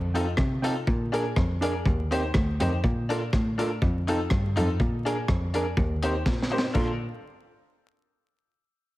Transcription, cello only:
0, 0, Header, 1, 2, 480
1, 0, Start_track
1, 0, Key_signature, -2, "major"
1, 0, Tempo, 489396
1, 856, Time_signature, 4, 2, 24, 8
1, 8800, End_track
2, 0, Start_track
2, 0, Title_t, "Cello"
2, 0, Program_c, 0, 42
2, 0, Note_on_c, 0, 41, 116
2, 304, Note_off_c, 0, 41, 0
2, 377, Note_on_c, 0, 48, 103
2, 785, Note_off_c, 0, 48, 0
2, 859, Note_on_c, 0, 46, 114
2, 1267, Note_off_c, 0, 46, 0
2, 1338, Note_on_c, 0, 41, 98
2, 1815, Note_off_c, 0, 41, 0
2, 1821, Note_on_c, 0, 39, 101
2, 2229, Note_off_c, 0, 39, 0
2, 2303, Note_on_c, 0, 38, 96
2, 2554, Note_off_c, 0, 38, 0
2, 2560, Note_on_c, 0, 41, 93
2, 2750, Note_off_c, 0, 41, 0
2, 2785, Note_on_c, 0, 46, 121
2, 3192, Note_off_c, 0, 46, 0
2, 3269, Note_on_c, 0, 45, 102
2, 3674, Note_off_c, 0, 45, 0
2, 3747, Note_on_c, 0, 41, 106
2, 4153, Note_off_c, 0, 41, 0
2, 4229, Note_on_c, 0, 43, 91
2, 4443, Note_off_c, 0, 43, 0
2, 4483, Note_on_c, 0, 41, 88
2, 4672, Note_off_c, 0, 41, 0
2, 4707, Note_on_c, 0, 46, 109
2, 5113, Note_off_c, 0, 46, 0
2, 5185, Note_on_c, 0, 41, 96
2, 5591, Note_off_c, 0, 41, 0
2, 5664, Note_on_c, 0, 39, 113
2, 6071, Note_off_c, 0, 39, 0
2, 6140, Note_on_c, 0, 46, 94
2, 6548, Note_off_c, 0, 46, 0
2, 6620, Note_on_c, 0, 46, 101
2, 6857, Note_off_c, 0, 46, 0
2, 8800, End_track
0, 0, End_of_file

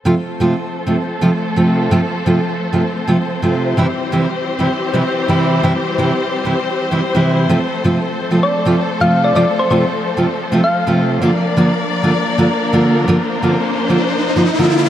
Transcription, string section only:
0, 0, Header, 1, 2, 480
1, 0, Start_track
1, 0, Key_signature, -1, "major"
1, 0, Tempo, 465116
1, 60, Time_signature, 4, 2, 24, 8
1, 15366, End_track
2, 0, Start_track
2, 0, Title_t, "String section"
2, 0, Program_c, 0, 48
2, 58, Note_on_c, 0, 57, 70
2, 59, Note_on_c, 0, 53, 74
2, 59, Note_on_c, 0, 72, 82
2, 60, Note_on_c, 0, 60, 70
2, 60, Note_on_c, 0, 69, 70
2, 3861, Note_off_c, 0, 53, 0
2, 3861, Note_off_c, 0, 57, 0
2, 3862, Note_off_c, 0, 69, 0
2, 3900, Note_on_c, 0, 55, 72
2, 3900, Note_on_c, 0, 67, 72
2, 3901, Note_on_c, 0, 52, 78
2, 7701, Note_off_c, 0, 55, 0
2, 7702, Note_off_c, 0, 52, 0
2, 7702, Note_off_c, 0, 67, 0
2, 7741, Note_on_c, 0, 53, 76
2, 7741, Note_on_c, 0, 69, 72
2, 7742, Note_on_c, 0, 57, 71
2, 11538, Note_off_c, 0, 72, 0
2, 11539, Note_off_c, 0, 60, 0
2, 11542, Note_off_c, 0, 69, 0
2, 11543, Note_off_c, 0, 57, 0
2, 11580, Note_on_c, 0, 58, 73
2, 11581, Note_on_c, 0, 62, 75
2, 11581, Note_on_c, 0, 70, 72
2, 11581, Note_on_c, 0, 74, 85
2, 13481, Note_off_c, 0, 74, 0
2, 13501, Note_on_c, 0, 72, 85
2, 15366, Note_off_c, 0, 53, 0
2, 15366, Note_off_c, 0, 58, 0
2, 15366, Note_off_c, 0, 62, 0
2, 15366, Note_off_c, 0, 70, 0
2, 15366, Note_off_c, 0, 72, 0
2, 15366, End_track
0, 0, End_of_file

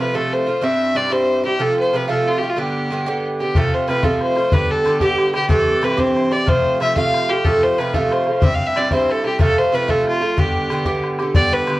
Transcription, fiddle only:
0, 0, Header, 1, 2, 480
1, 0, Start_track
1, 0, Tempo, 325027
1, 917, Time_signature, 6, 3, 24, 8
1, 17425, End_track
2, 0, Start_track
2, 0, Title_t, "Fiddle"
2, 0, Program_c, 0, 110
2, 1, Note_on_c, 0, 71, 81
2, 222, Note_on_c, 0, 69, 94
2, 244, Note_off_c, 0, 71, 0
2, 494, Note_on_c, 0, 72, 80
2, 516, Note_off_c, 0, 69, 0
2, 947, Note_on_c, 0, 76, 85
2, 969, Note_off_c, 0, 72, 0
2, 1424, Note_on_c, 0, 74, 88
2, 1446, Note_off_c, 0, 76, 0
2, 1662, Note_on_c, 0, 72, 84
2, 1684, Note_off_c, 0, 74, 0
2, 2140, Note_off_c, 0, 72, 0
2, 2149, Note_on_c, 0, 67, 80
2, 2379, Note_on_c, 0, 69, 90
2, 2401, Note_off_c, 0, 67, 0
2, 2637, Note_off_c, 0, 69, 0
2, 2652, Note_on_c, 0, 72, 76
2, 2890, Note_on_c, 0, 71, 77
2, 2912, Note_off_c, 0, 72, 0
2, 3089, Note_off_c, 0, 71, 0
2, 3098, Note_on_c, 0, 69, 76
2, 3367, Note_on_c, 0, 65, 78
2, 3389, Note_off_c, 0, 69, 0
2, 3520, Note_on_c, 0, 67, 65
2, 3542, Note_off_c, 0, 65, 0
2, 3691, Note_on_c, 0, 65, 77
2, 3713, Note_off_c, 0, 67, 0
2, 3826, Note_on_c, 0, 67, 72
2, 3848, Note_off_c, 0, 65, 0
2, 4800, Note_off_c, 0, 67, 0
2, 5016, Note_on_c, 0, 67, 70
2, 5272, Note_on_c, 0, 69, 84
2, 5294, Note_off_c, 0, 67, 0
2, 5522, Note_on_c, 0, 72, 75
2, 5544, Note_off_c, 0, 69, 0
2, 5735, Note_off_c, 0, 72, 0
2, 5744, Note_on_c, 0, 71, 76
2, 5969, Note_on_c, 0, 69, 76
2, 5991, Note_off_c, 0, 71, 0
2, 6232, Note_off_c, 0, 69, 0
2, 6238, Note_on_c, 0, 72, 88
2, 6696, Note_on_c, 0, 71, 88
2, 6719, Note_off_c, 0, 72, 0
2, 6954, Note_on_c, 0, 69, 81
2, 6976, Note_off_c, 0, 71, 0
2, 7393, Note_off_c, 0, 69, 0
2, 7402, Note_on_c, 0, 67, 85
2, 7859, Note_off_c, 0, 67, 0
2, 7899, Note_on_c, 0, 67, 85
2, 8106, Note_off_c, 0, 67, 0
2, 8120, Note_on_c, 0, 69, 89
2, 8626, Note_on_c, 0, 71, 88
2, 8649, Note_off_c, 0, 69, 0
2, 8851, Note_on_c, 0, 72, 83
2, 8873, Note_off_c, 0, 71, 0
2, 9335, Note_on_c, 0, 74, 92
2, 9357, Note_off_c, 0, 72, 0
2, 9573, Note_on_c, 0, 72, 93
2, 9595, Note_off_c, 0, 74, 0
2, 10051, Note_off_c, 0, 72, 0
2, 10059, Note_on_c, 0, 76, 87
2, 10266, Note_off_c, 0, 76, 0
2, 10289, Note_on_c, 0, 77, 95
2, 10764, Note_on_c, 0, 67, 83
2, 10786, Note_off_c, 0, 77, 0
2, 10995, Note_on_c, 0, 69, 98
2, 11018, Note_off_c, 0, 67, 0
2, 11266, Note_on_c, 0, 72, 82
2, 11288, Note_off_c, 0, 69, 0
2, 11497, Note_on_c, 0, 71, 78
2, 11519, Note_off_c, 0, 72, 0
2, 11728, Note_on_c, 0, 69, 82
2, 11750, Note_off_c, 0, 71, 0
2, 11996, Note_on_c, 0, 72, 84
2, 12018, Note_off_c, 0, 69, 0
2, 12452, Note_on_c, 0, 76, 97
2, 12474, Note_off_c, 0, 72, 0
2, 12616, Note_on_c, 0, 77, 89
2, 12638, Note_off_c, 0, 76, 0
2, 12792, Note_on_c, 0, 76, 100
2, 12814, Note_off_c, 0, 77, 0
2, 12948, Note_on_c, 0, 74, 91
2, 12970, Note_off_c, 0, 76, 0
2, 13166, Note_off_c, 0, 74, 0
2, 13183, Note_on_c, 0, 72, 73
2, 13453, Note_on_c, 0, 69, 80
2, 13475, Note_off_c, 0, 72, 0
2, 13665, Note_off_c, 0, 69, 0
2, 13674, Note_on_c, 0, 67, 75
2, 13874, Note_off_c, 0, 67, 0
2, 13902, Note_on_c, 0, 69, 98
2, 14155, Note_on_c, 0, 72, 83
2, 14177, Note_off_c, 0, 69, 0
2, 14388, Note_on_c, 0, 71, 83
2, 14410, Note_off_c, 0, 72, 0
2, 14625, Note_on_c, 0, 69, 77
2, 14647, Note_off_c, 0, 71, 0
2, 14879, Note_off_c, 0, 69, 0
2, 14889, Note_on_c, 0, 65, 87
2, 15341, Note_on_c, 0, 67, 76
2, 15364, Note_off_c, 0, 65, 0
2, 16318, Note_off_c, 0, 67, 0
2, 16766, Note_on_c, 0, 74, 93
2, 17028, Note_on_c, 0, 71, 83
2, 17051, Note_off_c, 0, 74, 0
2, 17425, Note_off_c, 0, 71, 0
2, 17425, End_track
0, 0, End_of_file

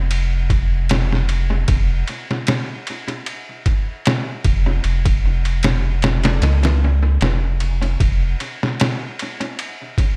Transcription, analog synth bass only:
0, 0, Header, 1, 2, 480
1, 0, Start_track
1, 0, Tempo, 789474
1, 1025, Time_signature, 4, 2, 24, 8
1, 6180, End_track
2, 0, Start_track
2, 0, Title_t, "Analog synth bass"
2, 0, Program_c, 0, 38
2, 0, Note_on_c, 0, 29, 73
2, 1005, Note_off_c, 0, 29, 0
2, 1024, Note_on_c, 0, 29, 86
2, 1238, Note_off_c, 0, 29, 0
2, 2705, Note_on_c, 0, 29, 93
2, 2919, Note_off_c, 0, 29, 0
2, 2946, Note_on_c, 0, 29, 81
2, 3159, Note_off_c, 0, 29, 0
2, 3185, Note_on_c, 0, 29, 70
2, 3901, Note_off_c, 0, 29, 0
2, 3905, Note_on_c, 0, 37, 72
2, 4364, Note_off_c, 0, 37, 0
2, 4385, Note_on_c, 0, 29, 69
2, 4844, Note_off_c, 0, 29, 0
2, 4865, Note_on_c, 0, 29, 84
2, 5079, Note_off_c, 0, 29, 0
2, 6180, End_track
0, 0, End_of_file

